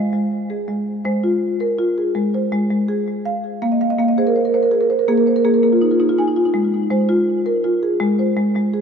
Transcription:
0.00 0.12 G#3 medium
0.00 0.31 C5 medium
0.00 0.50 D#5 medium
0.13 0.50 G#3 medium
0.50 0.87 G#4 medium
0.68 1.04 G#3 medium
1.05 2.11 G#3 medium
1.05 1.60 C5 medium
1.24 1.60 F4 medium
1.60 2.15 A#4 medium
1.78 2.15 F4 medium
1.98 2.52 G#4 medium
2.15 2.51 G#3 medium
2.34 2.89 C5 medium
2.52 2.69 G#3 medium
2.70 3.07 G#3 medium
2.88 3.44 G#4 medium
3.25 3.61 F5 medium
3.62 3.96 A#3 medium
3.62 3.79 F5 medium
3.72 3.89 D#5 medium
3.81 3.97 F5 medium
3.90 4.07 D#5 medium
3.99 5.04 A#3 medium
3.99 4.16 F5 medium
4.08 4.25 D#5 medium
4.18 4.54 G#4 medium
4.18 4.34 C5 medium
4.27 4.44 A#4 medium
4.36 4.53 C5 medium
4.45 4.61 A#4 medium
4.54 4.71 C5 medium
4.63 4.79 A#4 medium
4.71 4.73 G#4 medium
4.81 4.98 A#4 medium
4.90 5.07 C5 medium
4.99 5.16 A#4 medium
5.08 5.42 A#3 loud
5.08 5.26 G#4 medium
5.17 5.35 A#4 medium
5.27 5.44 C5 medium
5.36 5.53 A#4 medium
5.44 5.62 A#3 medium
5.44 5.62 G#4 medium
5.54 5.71 A#4 medium
5.63 6.00 A#3 medium
5.63 5.80 G#4 medium
5.72 5.90 F4 medium
5.81 5.99 D#4 medium
5.91 6.08 F4 medium
6.00 6.17 D#4 medium
6.09 6.26 F4 medium
6.18 6.26 D#4 medium
6.18 6.55 G#5 medium
6.28 6.44 D#4 medium
6.36 6.53 F4 medium
6.45 6.62 D#4 medium
6.54 6.89 G#3 medium
6.91 7.96 G#3 medium
6.91 7.46 C5 medium
7.09 7.46 F4 medium
7.46 8.00 A#4 medium
7.64 8.01 F4 medium
7.83 8.37 G#4 medium
8.00 8.34 G#3 loud
8.19 8.74 C5 medium
8.37 8.55 G#3 medium
8.56 8.81 G#3 medium
8.74 8.81 G#4 medium

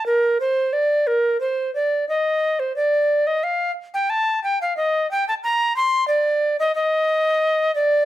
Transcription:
0.06 0.38 A#4 medium
0.40 0.74 C5 medium
0.73 1.09 D5 medium
1.07 1.40 A#4 medium
1.41 1.73 C5 medium
1.75 2.08 D5 medium
2.09 2.61 D#5 medium
2.60 2.75 C5 medium
2.76 3.28 D5 medium
3.27 3.45 D#5 medium
3.44 3.71 F5 medium
3.94 4.11 G5 medium
4.10 4.42 A5 loud
4.44 4.59 G5 medium
4.62 4.76 F5 medium
4.77 5.09 D#5 loud
5.11 5.27 G5 medium
5.28 5.34 A5 medium
5.44 5.76 A#5 loud
5.76 6.07 C6 loud
6.08 6.57 D5 medium
6.60 6.75 D#5 medium
6.75 7.74 D#5 loud
7.75 8.05 D5 loud

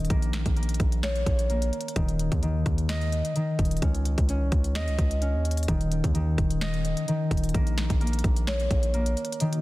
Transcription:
0.00 0.15 D#3 medium
0.00 0.67 C#4 medium
0.00 0.96 D#5 medium
0.05 closed hi-hat medium
0.10 0.44 A#1 loud
0.10 0.56 A#3 loud
0.10 kick loud
0.10 closed hi-hat medium
0.22 closed hi-hat medium
0.33 finger snap medium
0.33 snare medium
0.33 closed hi-hat medium
0.46 0.79 A#1 loud
0.46 kick medium
0.46 closed hi-hat medium
0.56 1.49 A#3 medium
0.56 closed hi-hat soft
0.63 closed hi-hat medium
0.69 closed hi-hat medium
0.74 closed hi-hat medium
0.80 1.25 A#1 loud
0.80 kick loud
0.80 closed hi-hat medium
0.92 closed hi-hat medium
1.03 2.94 C#5 medium
1.03 finger snap loud
1.03 snare loud
1.03 closed hi-hat medium
1.16 closed hi-hat soft
1.26 1.71 A#1 loud
1.26 kick medium
1.26 closed hi-hat medium
1.39 closed hi-hat medium
1.50 4.71 A#3 medium
1.50 closed hi-hat soft
1.62 closed hi-hat medium
1.73 closed hi-hat soft
1.81 closed hi-hat medium
1.88 closed hi-hat medium
1.96 2.30 D#1 loud
1.96 2.41 D#3 medium
1.96 kick loud
1.96 closed hi-hat medium
2.08 closed hi-hat medium
2.19 closed hi-hat medium
2.32 2.65 D#2 loud
2.32 kick medium
2.32 closed hi-hat medium
2.43 3.35 D#3 medium
2.43 closed hi-hat medium
2.66 3.22 D#2 loud
2.66 kick loud
2.66 closed hi-hat medium
2.78 closed hi-hat medium
2.89 4.67 D#5 loud
2.89 finger snap loud
2.89 snare loud
2.89 closed hi-hat medium
3.01 closed hi-hat soft
3.12 closed hi-hat medium
3.25 closed hi-hat medium
3.36 3.87 D#3 medium
3.36 closed hi-hat medium
3.59 3.81 D#1 loud
3.59 kick loud
3.59 closed hi-hat medium
3.65 closed hi-hat medium
3.71 closed hi-hat medium
3.77 closed hi-hat medium
3.82 4.16 C#2 loud
3.82 4.29 C#4 medium
3.82 kick loud
3.82 closed hi-hat medium
3.95 closed hi-hat medium
4.05 closed hi-hat medium
4.18 4.43 C#2 loud
4.18 kick medium
4.18 closed hi-hat medium
4.29 5.21 C#4 medium
4.29 closed hi-hat medium
4.41 4.52 C2 loud
4.52 4.77 C#2 loud
4.52 kick loud
4.52 closed hi-hat medium
4.64 closed hi-hat medium
4.75 4.89 D#2 loud
4.75 6.54 D#5 loud
4.75 finger snap loud
4.75 snare loud
4.75 closed hi-hat medium
4.88 4.98 C#2 loud
4.88 closed hi-hat soft
4.99 5.36 C#2 loud
4.99 kick medium
4.99 closed hi-hat medium
5.11 closed hi-hat medium
5.22 8.11 C#4 medium
5.22 closed hi-hat medium
5.34 5.67 D#2 loud
5.45 closed hi-hat medium
5.51 closed hi-hat medium
5.57 closed hi-hat medium
5.63 closed hi-hat medium
5.68 6.02 D#1 loud
5.68 6.13 D#3 medium
5.68 kick loud
5.68 closed hi-hat medium
5.81 closed hi-hat medium
5.92 closed hi-hat medium
6.04 6.37 D#2 loud
6.04 kick medium
6.04 closed hi-hat medium
6.14 7.07 D#3 medium
6.14 closed hi-hat medium
6.38 6.95 D#1 loud
6.38 kick loud
6.38 closed hi-hat medium
6.50 closed hi-hat medium
6.61 8.40 D#5 loud
6.61 finger snap loud
6.61 snare loud
6.61 closed hi-hat medium
6.74 closed hi-hat soft
6.85 closed hi-hat medium
6.97 closed hi-hat medium
7.08 7.59 D#3 medium
7.08 closed hi-hat medium
7.31 7.53 D#1 loud
7.31 kick medium
7.31 closed hi-hat medium
7.37 closed hi-hat medium
7.44 closed hi-hat medium
7.49 closed hi-hat medium
7.54 7.89 A#1 loud
7.54 8.00 A#3 medium
7.54 kick loud
7.54 closed hi-hat medium
7.67 closed hi-hat medium
7.78 finger snap medium
7.78 snare medium
7.78 closed hi-hat medium
7.90 8.23 A#1 loud
7.90 kick medium
7.90 closed hi-hat medium
8.01 8.93 A#3 medium
8.01 closed hi-hat soft
8.07 closed hi-hat medium
8.13 closed hi-hat medium
8.19 closed hi-hat medium
8.24 8.69 A#1 loud
8.24 kick loud
8.24 closed hi-hat medium
8.36 closed hi-hat medium
8.47 9.61 C#5 medium
8.47 finger snap loud
8.47 snare loud
8.47 closed hi-hat medium
8.60 closed hi-hat soft
8.71 9.15 A#1 loud
8.71 kick medium
8.71 closed hi-hat medium
8.83 closed hi-hat medium
8.94 9.61 A#3 medium
8.94 closed hi-hat soft
9.06 closed hi-hat medium
9.17 closed hi-hat soft
9.25 closed hi-hat medium
9.32 closed hi-hat medium
9.40 9.61 D#3 medium
9.40 9.61 A#3 medium
9.40 9.61 D#4 medium
9.40 9.61 F#4 medium
9.40 9.61 D#5 medium
9.40 closed hi-hat medium
9.53 closed hi-hat medium

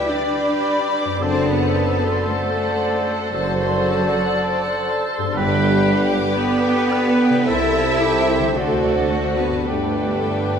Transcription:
0.00 0.39 G2 medium
0.00 0.48 D4 soft
0.00 0.11 E4 medium
0.00 1.17 G4 medium
0.00 1.24 G4 medium
0.00 1.17 B4 medium
0.00 1.18 B4 medium
0.00 1.17 D5 medium
0.00 0.11 E5 medium
0.00 0.11 G5 medium
0.10 1.24 G3 medium
0.10 1.22 D4 medium
0.10 1.21 D5 medium
0.10 0.39 D5 medium
0.10 1.24 D5 medium
0.10 1.19 B5 medium
0.39 0.67 G5 medium
0.68 0.95 B5 medium
0.96 1.22 D6 medium
1.05 4.95 F#2 medium
1.09 4.99 C4 soft
1.13 5.03 D4 soft
1.18 2.10 F#1 medium
1.18 1.48 C4 medium
1.18 5.08 A4 soft
1.18 3.32 A4 medium
1.18 1.48 C5 medium
1.18 5.31 C5 medium
1.18 7.29 D5 medium
1.18 2.27 A5 medium
1.22 2.28 D3 medium
1.22 5.36 A4 medium
1.22 2.28 C5 medium
1.22 5.32 C5 medium
1.22 1.48 D5 medium
1.22 1.77 A5 medium
1.48 2.28 B3 medium
1.48 2.27 B4 medium
1.48 1.76 F#5 medium
1.78 2.03 A5 medium
2.05 2.30 C6 medium
2.27 3.14 D3 medium
2.27 3.31 A3 medium
2.27 3.32 A4 medium
2.27 3.16 C5 medium
2.27 3.30 A5 medium
2.32 2.56 A5 medium
2.59 2.83 F#5 medium
2.85 3.08 D5 medium
3.11 3.34 F#5 medium
3.31 4.16 F#1 medium
3.31 5.04 D3 medium
3.31 4.84 F#3 medium
3.31 4.85 F#4 medium
3.31 5.05 C5 medium
3.31 5.12 A5 medium
3.31 3.57 A5 medium
3.35 5.32 A4 medium
3.61 3.84 C6 medium
3.86 4.09 A5 medium
4.11 4.35 F#5 medium
4.37 4.61 D5 medium
4.63 4.87 F#5 medium
4.89 5.12 A5 medium
5.14 7.43 G2 medium
5.14 5.37 C6 medium
5.22 7.46 B3 medium
5.26 7.48 D4 medium
5.32 6.18 G1 medium
5.32 6.31 D3 medium
5.32 6.31 G3 medium
5.32 7.50 G4 medium
5.32 7.43 G4 medium
5.32 7.43 B4 medium
5.32 6.31 B4 medium
5.32 6.34 G5 medium
5.36 6.32 G4 medium
5.36 7.29 B4 medium
5.36 6.08 B4 loud
5.36 5.60 D5 medium
5.36 5.85 B5 medium
5.61 5.85 G5 medium
5.86 6.10 B5 medium
6.09 6.35 D6 medium
6.34 7.48 D3 medium
6.34 7.48 B3 loud
6.34 6.94 G4 medium
6.34 7.47 B4 medium
6.34 7.49 B4 medium
6.34 7.45 G5 medium
6.34 6.62 B5 medium
6.62 6.90 G5 medium
6.90 7.47 B4 medium
6.90 7.19 D5 medium
7.19 7.47 G5 medium
7.29 8.51 C3 medium
7.34 8.42 C4 soft
7.38 8.56 E4 soft
7.43 8.58 C3 medium
7.43 9.69 A4 medium
7.43 8.56 A4 medium
7.43 9.62 C5 medium
7.43 7.75 E5 medium
7.43 8.56 E5 medium
7.47 8.38 C2 medium
7.47 8.56 E4 medium
7.47 9.66 A4 medium
7.47 8.03 A4 medium
7.47 7.73 C5 medium
7.47 8.55 C5 medium
7.47 8.57 A5 medium
7.77 8.03 E5 medium
8.01 8.59 G4 medium
8.01 8.29 A5 medium
8.29 8.56 C6 medium
8.38 9.62 D3 medium
8.43 9.64 C4 soft
8.47 9.56 D4 soft
8.52 9.47 D2 medium
8.52 9.69 F#4 soft
8.52 9.66 F#4 medium
8.52 9.38 A4 medium
8.56 9.48 D2 medium
8.56 9.65 D3 medium
8.56 9.37 A3 medium
8.56 9.66 F#4 medium
8.56 8.81 C5 medium
8.56 9.68 C5 medium
8.56 8.82 D5 medium
8.56 9.66 F#5 medium
8.83 9.11 D5 medium
9.11 9.39 F#5 medium
9.37 9.66 B3 medium
9.37 9.65 B4 medium
9.37 9.66 A5 soft
9.48 10.59 G2 soft
9.52 10.59 B3 soft
9.57 10.59 D4 soft
9.61 10.59 G4 soft
9.61 10.59 A4 medium
9.61 9.92 B4 soft
9.66 10.59 G1 medium
9.66 10.59 G2 medium
9.66 10.59 D3 medium
9.66 10.59 A3 medium
9.66 10.59 D4 medium
9.66 10.59 G4 medium
9.66 10.59 G4 soft
9.66 10.59 B4 medium
9.66 10.59 B4 soft
9.66 10.59 G5 medium
9.93 10.22 D5 soft
10.22 10.51 G5 soft
10.50 10.59 B5 soft

